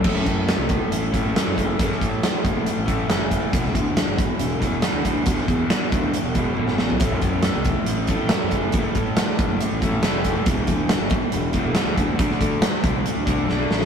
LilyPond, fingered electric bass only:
\new Staff \with { instrumentName = "Fingered electric bass" } { \clef bass \time 4/4 \key e \minor \tempo 4 = 138 a,,16 fis,16 fis,8. c,8 r16 a,,8. a,,16 r16 fis,16 fis,,8 | fis,,16 r16 a,8 r8 fis,,8 r16 a,,8. fis,,4 | e,,16 d,16 d,8. g,,8 r16 e,,8. e,,16 r16 d,16 d,8 | d,16 r16 e,8 r8 d,8 r16 e,,8. g,,8 a,,8 |
a,,16 fis,16 fis,8. c,8 r16 a,,8. a,,16 r16 fis,16 fis,,8 | fis,,16 r16 a,8 r8 fis,,8 r16 a,,8. f,,4 | e,,16 d,16 d,8. g,,8 r16 e,,8. e,,16 r16 d,16 d,8 | d,16 r16 d8 r8 c,8 r16 d,16 c,8 b,,8 a,,8 | }